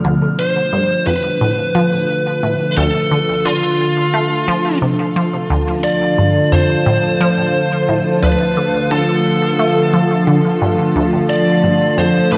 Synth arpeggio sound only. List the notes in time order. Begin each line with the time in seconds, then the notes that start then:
0.04 D2
0.73 G2
1.07 F2
1.41 A2
1.75 F3
2.43 A2
2.77 D2
3.11 D3
3.45 D3
4.14 A3
4.48 F3
4.82 C3
5.16 F3
5.50 D2
6.18 G2
6.52 F2
6.86 A2
7.21 F3
7.89 A2
8.23 D2
8.57 D3
8.91 D3
9.59 A3
9.93 F3
10.27 D3
10.62 G2
10.96 D2
11.64 G2
11.98 F2
12.32 A2